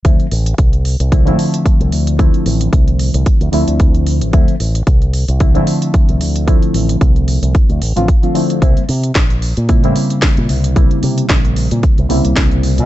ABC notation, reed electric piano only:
X:1
M:4/4
L:1/16
Q:"Swing 16ths" 1/4=112
K:Dm
V:1 name="Reed electric piano"
[D,F,A,CE] z6 z [D,F,A,CE] [D,F,A,CE]6- [D,F,A,CE] | [D,F,A,CE]8- [D,F,A,CE]2 [D,F,A,CE]6 | [D,F,A,CE] z6 z [D,F,A,CE] [D,F,A,CE]6- [D,F,A,CE] | [D,F,A,CE]8- [D,F,A,CE]2 z [D,F,A,CF] z [D,F,A,CF] [D,F,A,CE]2 |
[_D,G,B,CE] z6 z [D,G,B,CE] [D,G,B,CE]6- [D,G,B,CE] | [_D,G,B,CE]8- [D,G,B,CE]2 [D,G,B,CE]6 |]